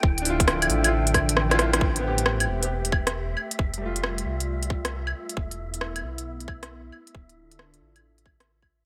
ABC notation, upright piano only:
X:1
M:4/4
L:1/16
Q:"Swing 16ths" 1/4=135
K:Am
V:1 name="Upright piano"
z2 [DEF]4- [DEF] [DEF] z4 z [DEF]3 | z2 [B,CG]4- [B,CG] [B,CG] z8 | z2 [G,A,F]4- [G,A,F] z8 z | z16 |
z16 |]